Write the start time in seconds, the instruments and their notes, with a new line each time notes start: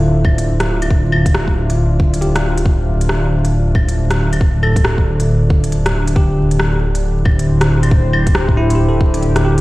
Already playing: detuned saw bass D1, ambient pad D3 D4 F4 A4 C5 E5, tine electric piano E4 F4 A4 C5
0.25 kick, claves
0.38 closed hi-hat
0.60 cross-stick, closed hi-hat
0.82 closed hi-hat, claves
0.90 kick
1.12 claves
1.26 kick, closed hi-hat
1.35 cross-stick
1.48 kick
1.70 closed hi-hat
2.00 kick
2.14 closed hi-hat
2.21 tine electric piano G4, closed hi-hat
2.36 cross-stick, closed hi-hat
2.58 closed hi-hat
2.65 kick
3.01 closed hi-hat
3.09 cross-stick
3.45 closed hi-hat
3.75 kick, claves
3.89 closed hi-hat
4.11 cross-stick, closed hi-hat
4.33 closed hi-hat, claves
4.41 kick
4.63 tine electric piano A4, claves
4.76 kick, closed hi-hat
4.85 cross-stick
4.98 kick
5.20 closed hi-hat
5.50 kick
5.64 closed hi-hat
5.72 closed hi-hat
5.86 cross-stick, closed hi-hat
6.07 closed hi-hat
6.16 detuned saw bass D1, ambient pad D3, tine electric piano G4, kick
6.42 ambient pad D4
6.51 closed hi-hat
6.59 cross-stick
6.95 ambient pad E4, closed hi-hat
7.18 ambient pad C5
7.25 ambient pad G4, kick, claves
7.39 closed hi-hat
7.61 cross-stick, closed hi-hat
7.83 closed hi-hat, claves
7.91 kick
8.13 claves
8.27 kick, closed hi-hat
8.35 cross-stick
8.48 kick
8.57 tine electric piano E4
8.70 closed hi-hat
8.75 tine electric piano G4
8.89 tine electric piano A4
9.01 kick
9.14 closed hi-hat
9.23 closed hi-hat
9.36 cross-stick, closed hi-hat
9.45 tine electric piano G4